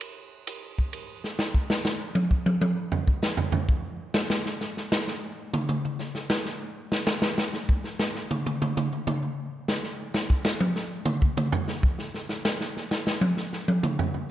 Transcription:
0.01 ride
0.47 hi-hat pedal, ride
0.79 kick
0.93 ride
1.24 snare
1.39 snare
1.54 kick
1.70 snare
1.84 snare, hi-hat pedal
2.15 high tom
2.31 kick
2.46 high tom
2.61 high tom
2.92 floor tom
3.08 kick
3.22 snare, hi-hat pedal
3.37 floor tom
3.52 floor tom
3.69 kick
4.14 snare
4.30 snare
4.46 snare
4.61 snare, hi-hat pedal
4.77 snare
4.92 snare
5.07 snare
5.53 mid tom
5.69 mid tom
5.85 mid tom
5.99 snare, hi-hat pedal
6.15 snare
6.30 snare
6.45 snare
6.92 snare
7.07 snare
7.22 snare
7.37 snare, hi-hat pedal
7.54 snare
7.69 kick
7.84 snare
7.99 snare
8.15 snare
8.31 mid tom
8.46 mid tom
8.62 mid tom
8.77 hi-hat pedal, mid tom
8.93 mid tom
9.07 mid tom
9.22 mid tom
9.68 snare
9.83 snare
10.14 snare, hi-hat pedal
10.30 kick
10.45 snare
10.60 high tom
10.76 snare
11.05 mid tom
11.22 kick
11.37 mid tom
11.52 floor tom, hi-hat pedal
11.68 snare
11.83 kick
11.99 snare
12.14 snare
12.29 snare
12.45 snare
12.61 snare
12.77 snare
12.91 snare, hi-hat pedal
13.07 snare
13.21 high tom
13.37 snare
13.53 snare
13.68 high tom
13.83 mid tom
13.99 floor tom
14.14 floor tom

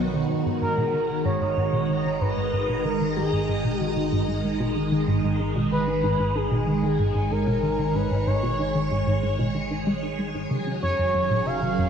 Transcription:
Already playing: B1 B2 D#3 B3 F#4 C#5
0.14 D#3
0.29 G#1 G#2 G#3
0.46 G#2
0.61 G#2 A#4
0.67 A#5
0.77 B2
0.93 D#3
1.09 D#3
1.23 G#2 C#5 D#5
1.41 G#2
1.57 G#2
1.73 B2
1.89 D#3
2.05 D#3
2.21 G#2 B4
2.37 G#2
2.53 G#2
2.69 B2
2.85 D#3 A#4
3.01 D#3
3.17 G#2 G#4
3.32 G#2
3.49 G#2
3.64 B2
3.80 D#3 F#4
3.96 D#3
4.12 G#2
4.28 G#2
4.44 G#2
4.60 B2
4.76 D#3
4.92 D#3
5.08 G#2
5.24 G#2
5.40 G#2
5.55 B2
5.71 D#3 B4
5.87 D#3
6.03 G#2
6.19 G#2
6.35 G#2 G#4
6.51 B2
6.67 D#3 G#4
6.83 D#3
6.99 G#2 C#5
7.15 G#2
7.31 G#2 A#4
7.47 B2
7.63 D#3
7.79 D#3
7.95 G#2 B4
8.11 G#2
8.27 G#2 C#5
8.43 B2
8.59 D#3
8.75 D#3
8.91 G#2
9.07 G#2
9.23 G#2
9.39 B2
9.55 D#3
9.71 D#3
9.87 G#3
10.03 D#4
10.19 G#3
10.35 G#2
10.50 F#1 C#3 F#3
10.65 C#3 C#4
10.82 F#2 C#5
10.99 F#2
11.14 F#2
11.20 A#4
11.30 A#2
11.46 C#3 F5
11.62 C#3
11.78 F#2

